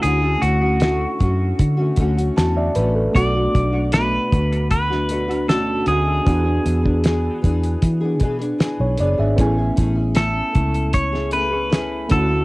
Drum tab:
HH |x-x-x-x-x-xxx-x-|x-x-x-xxx-xxx-x-|x-x-x-xxx-xxx-x-|x-x-x-xxx-x-x-x-|
SD |----o-------o---|----o----o--o---|----o-------o---|----o----o--o---|
BD |------o-o-o-----|o-o---o-o-------|o--o--o-o-o-----|o-o---o-o-----o-|